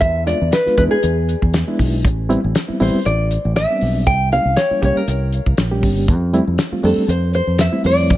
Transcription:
0.00 E2 E5, kick, closed hi-hat
0.26 G#3 B3 D4 F4 D5, snare, closed hi-hat
0.41 E2
0.52 B4, snare, closed hi-hat
0.66 G#3 B3 D4 F4, muted fingered electric bass stroke, snare
0.78 E2 G#3 B3 D4 E4 B4, kick, closed hi-hat
0.91 G#4, muted fingered electric bass stroke
1.03 E2 D4 G#4, closed hi-hat
1.29 closed hi-hat
1.42 E2, kick
1.54 snare, closed hi-hat
1.68 G#3 B3 D4 E4
1.79 B1, kick, open hi-hat
2.05 A1, kick, closed hi-hat
2.29 G3 B3 C4 E4, closed hi-hat
2.44 A1 C4 D4
2.55 snare, closed hi-hat
2.68 G3 B3 C4 E4, muted fingered electric bass stroke
2.80 A1 G3 B3 C4 E4 C5, open hi-hat
3.05 A1 D5, closed hi-hat
3.31 closed hi-hat
3.45 A1
3.56 E5, snare, closed hi-hat
3.70 G3 B3 C4 D4
3.81 B1, open hi-hat
4.07 C2 G5, kick, closed hi-hat
4.32 G3 A#3 C#4 E4 F5, closed hi-hat
4.45 C2 C#4 G4
4.56 C#5, snare, closed hi-hat
4.71 G3 A#3 C#4 E4, muted fingered electric bass stroke
4.82 C2 G3 A#3 C#4 G4 C#5, kick, closed hi-hat
4.97 A#4
5.08 C2, closed hi-hat
5.33 closed hi-hat
5.46 C2, kick
5.58 A#1, snare, closed hi-hat
5.71 G3 A#3 C#4 G4
5.83 G1, kick, open hi-hat
6.08 F2, kick, closed hi-hat
6.33 G3 A3 C4 E4, closed hi-hat
6.47 F2
6.58 snare, closed hi-hat
6.72 G3 A3 C4 F4, muted fingered electric bass stroke
6.83 F2 G3 A3 C4 D4 A4, open hi-hat
6.97 muted fingered electric bass stroke
7.08 F2 C5, closed hi-hat
7.33 C5, closed hi-hat
7.47 F2
7.58 E5, snare, closed hi-hat
7.72 G3 A3 C4 E4
7.84 F2 D5, open hi-hat
8.10 B1, kick, closed hi-hat

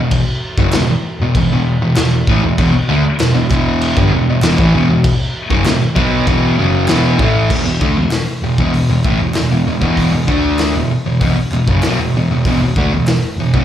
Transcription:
Already playing: E1 E2 B2
0.11 kick, crash
0.58 F#1 F#2 C#3, kick
0.73 E1 E2 B2, snare, clap, crash
0.89 muted picked electric bass stroke, muted distorted electric guitar stroke
1.19 E1 E2 B2
1.35 E1 E2 B2, kick, crash
1.52 E1 E2 B2
1.82 E1 E2 B2
1.96 E1 E2 B2, snare, clap, crash
2.27 A1 A2 E3, kick
2.43 E1 E2 B2
2.58 E1 E2 B2, kick, crash
2.73 muted distorted electric guitar stroke, muted picked electric bass stroke
2.89 D2 D3 A3
3.03 muted distorted electric guitar stroke, muted picked electric bass stroke
3.20 E1 E2 B2, snare, clap, crash
3.35 E1 E2 B2
3.50 E1 E2 B2 E3, kick, clap
3.81 crash
3.96 G1 G2 D3, kick
4.12 E1 E2 B2
4.28 E1 E2 B2
4.42 E1 E2 B2, snare, clap, crash
4.58 A1 A2 E3, kick
4.73 E1 E2 B2
4.89 E1 E2 B2
5.04 kick, crash
5.50 F#1 F#2 C#3, kick
5.66 E1 E2 B2, snare, clap, crash
5.81 muted distorted electric guitar stroke
5.95 B1 B2 F#3 B3, kick
6.26 E1 E2 B2 E3, kick, crash
6.57 F#1 F#2 C#3 F#3
6.88 E1 E2 B2 E3, snare, clap, crash
7.19 A1 A2 E3 A3, kick
7.50 E1 E2 B2, kick, crash
7.66 E1 E2 B2
7.81 D2 D3 A3, kick
7.95 E1 E2 B2
8.11 snare, clap, open hi-hat
8.42 E1 E2 B2
8.58 E1 E2 B2, kick
8.74 E1 E2 B2, open hi-hat
8.90 E1 E2 B2
9.04 A1 A2 E3, kick, clap
9.20 E1 E2 B2
9.34 E1 E2 B2, snare, clap, open hi-hat
9.51 E1 E2 B2
9.67 E1 E2 B2
9.81 E1 E2 B2 E3, kick
9.97 kick, open hi-hat
10.12 E1 E2 B2
10.27 D2 D3 A3 D4, kick
10.59 snare, clap, open hi-hat
10.74 E1 E2 B2
10.91 muted distorted electric guitar stroke
11.06 E1 E2 B2
11.20 E1 E2 B2, kick, open hi-hat
11.36 muted picked electric bass stroke, muted distorted electric guitar stroke
11.51 E1 E2 B2, clap
11.67 F#1 F#2 C#3, kick
11.81 B1 B2, snare, clap, open hi-hat
11.86 F#3
11.97 E1 E2 B2
12.12 E1
12.17 E2 B2
12.28 E1 E2
12.32 B2
12.45 E1 E2 B2, kick, open hi-hat
12.59 E1 E2 B2
12.76 D2 D3 A3, kick
12.90 E1 E2 B2
13.07 snare, clap, open hi-hat
13.36 E1 E2 B2
13.54 E1 E2 B2, kick

